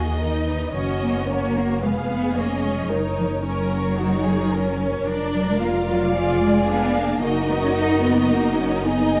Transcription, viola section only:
0.00 0.20 F#4 medium
0.21 0.74 D#4 soft
0.75 1.28 C#4 soft
1.29 1.82 A#3 medium
1.82 2.36 B3 soft
2.36 2.89 C#4 medium
2.89 3.44 D#4 medium
3.44 3.97 C#4 soft
3.98 4.51 D#4 medium
4.53 5.06 C#4 medium
5.06 5.60 D4 medium
5.60 6.13 F4 medium
6.14 6.67 F4 medium
6.68 7.21 D4 medium
7.22 9.20 D#4 medium

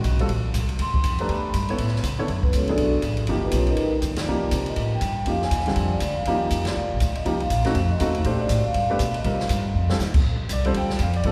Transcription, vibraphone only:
0.81 1.17 C6 loud
1.20 1.29 A#5 loud
1.30 1.67 B5 medium
2.44 2.54 B3 medium
2.44 2.53 B4 medium
2.55 2.69 C#4 medium
2.55 2.69 F#4 medium
2.55 2.69 A4 medium
2.55 2.69 C#5 medium
2.69 2.92 D4 medium
2.69 2.92 F#4 medium
2.69 2.92 A4 medium
2.69 2.92 D5 medium
3.44 3.53 B3 medium
3.44 3.53 F4 medium
3.44 3.54 G4 medium
3.44 3.53 B4 medium
3.55 3.68 C#4 soft
3.55 3.68 C#5 medium
3.70 3.92 D#4 medium
3.70 3.92 A#4 medium
3.70 3.92 B4 medium
3.70 3.92 D#5 medium
4.20 4.51 D5 medium
4.55 4.68 C5 medium
4.69 4.91 D#5 medium
4.94 5.26 G5 loud
5.29 5.42 F5 medium
5.44 5.66 G#5 medium
5.92 6.15 D5 medium
6.17 6.26 F5 medium
6.27 6.64 F5 medium
6.68 6.90 D5 medium
7.16 7.39 D#5 medium
7.41 7.50 F5 medium
7.51 7.88 F5 medium
7.91 8.14 D#5 medium
8.41 8.64 D5 medium
8.66 8.75 F5 medium
8.77 9.13 F5 medium
9.16 9.39 D#5 medium

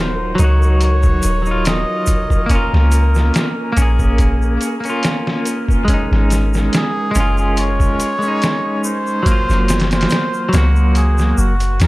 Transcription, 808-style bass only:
0.00 0.35 D#1 medium
0.39 1.20 C#2 medium
1.24 1.84 D#1 medium
2.73 3.31 C#2 medium
3.77 4.57 A#1 medium
6.11 6.69 G#1 medium
7.15 7.96 F#1 medium
9.49 10.07 F#1 medium
10.53 11.34 C#2 medium
11.38 11.79 F#1 medium
11.80 11.87 D#2 medium

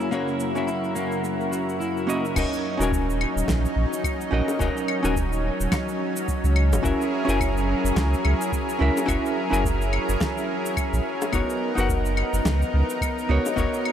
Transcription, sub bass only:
2.36 2.46 D#1 loud
2.80 3.26 D#1 loud
3.36 3.43 D#1 medium
3.48 3.66 A#1 medium
3.76 3.86 A#1 medium
4.32 4.42 A#1 medium
4.60 4.70 D#1 loud
5.04 5.50 D#1 loud
5.60 5.68 D#1 loud
6.44 6.74 C#2 medium
6.72 6.80 F#1 loud
6.84 6.94 F#1 loud
7.28 7.74 F#1 loud
7.84 7.92 F#1 loud
7.96 8.15 C#2 medium
8.25 8.34 C#2 medium
8.81 8.90 C#2 medium
9.08 9.18 F#1 loud
9.52 9.99 F#1 medium
10.09 10.16 F#1 medium
10.93 11.00 A#1 medium
11.33 11.43 F#1 loud
11.78 12.23 F#1 medium
12.33 12.41 F#1 loud
12.45 12.64 C#2 medium
12.74 12.83 C#2 medium
13.29 13.39 C#2 medium
13.57 13.67 F#1 loud

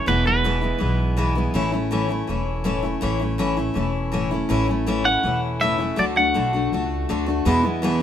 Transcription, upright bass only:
0.07 0.72 E1 medium
0.81 1.46 B1 medium
1.55 2.20 A1 medium
2.29 2.94 E1 medium
3.03 3.68 A1 medium
3.76 4.41 E1 medium
4.50 5.15 A1 medium
5.24 5.89 E1 medium
5.99 6.31 D2 medium
6.37 6.67 B1 medium
6.72 7.04 C#2 medium
7.10 7.41 D2 medium
7.46 8.03 E2 medium

